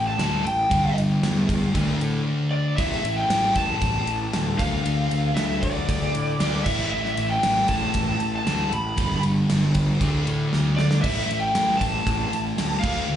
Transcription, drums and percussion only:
0.19 snare, ride
0.47 ride
0.71 kick, ride
0.98 ride
1.23 snare, ride
1.49 kick, ride
1.75 kick, ride
2.01 ride
2.78 kick, ride
2.92 snare
3.05 ride
3.30 snare, ride
3.55 kick, ride
3.81 kick, ride
4.07 ride
4.33 snare, ride
4.59 kick, ride
4.86 ride
5.11 ride
5.37 snare, ride
5.63 kick, ride
5.89 kick, ride
6.15 ride
6.40 snare, ride
6.66 kick, crash
7.05 snare
7.17 ride
7.43 snare, ride
7.68 kick, ride
7.94 kick, ride
8.20 ride
8.47 snare, ride
8.73 ride
8.97 kick, ride
9.11 snare
9.23 ride
9.50 snare, ride
9.75 kick, ride
10.01 kick, ride
10.27 ride
10.53 snare
10.79 snare
10.91 snare
11.04 kick, crash
11.17 snare
11.31 ride
11.55 snare, ride
11.81 kick, ride
12.07 kick, ride
12.33 ride
12.58 snare, ride
12.84 kick, crash

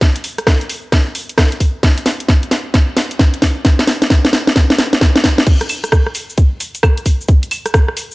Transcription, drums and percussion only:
0.01 kick, snare, closed hi-hat
0.16 closed hi-hat
0.24 open hi-hat
0.38 cross-stick, closed hi-hat
0.47 kick, cross-stick, snare
0.61 closed hi-hat
0.69 open hi-hat
0.92 kick, cross-stick, snare, closed hi-hat
1.15 open hi-hat
1.29 closed hi-hat
1.38 kick, cross-stick, snare
1.52 closed hi-hat
1.60 kick, open hi-hat
1.83 kick, snare, closed hi-hat
1.98 closed hi-hat
2.06 snare, open hi-hat
2.20 closed hi-hat
2.28 kick, snare
2.43 closed hi-hat
2.51 snare, open hi-hat
2.74 kick, snare, closed hi-hat
2.97 snare, open hi-hat
3.11 closed hi-hat
3.19 kick, snare
3.34 closed hi-hat
3.42 kick, snare, open hi-hat
3.65 kick, snare, closed hi-hat
3.79 snare, closed hi-hat
3.87 snare, open hi-hat
4.02 snare, closed hi-hat
4.10 kick, snare
4.25 snare, closed hi-hat
4.33 snare, open hi-hat
4.47 snare
4.56 kick, snare, closed hi-hat
4.70 snare
4.78 snare, open hi-hat
4.93 snare, closed hi-hat
5.01 kick, snare
5.16 snare, closed hi-hat
5.24 kick, snare, open hi-hat
5.38 snare
5.47 kick, closed hi-hat, crash, cabasa
5.61 cross-stick, closed hi-hat
5.69 open hi-hat, cabasa, claves
5.84 cross-stick, closed hi-hat, cabasa
5.92 kick, cross-stick, cabasa
6.06 cross-stick
6.15 open hi-hat, cabasa
6.29 cabasa
6.38 kick, closed hi-hat, cabasa
6.60 open hi-hat, cabasa
6.75 closed hi-hat, cabasa
6.83 kick, cross-stick, cabasa, claves
6.97 closed hi-hat
7.06 kick, open hi-hat, cabasa
7.21 cabasa
7.28 kick, closed hi-hat, cabasa
7.43 closed hi-hat
7.51 open hi-hat, cabasa, claves
7.66 cross-stick, closed hi-hat, cabasa
7.74 kick, cross-stick, cabasa
7.88 cross-stick
7.97 open hi-hat, cabasa
8.11 cabasa

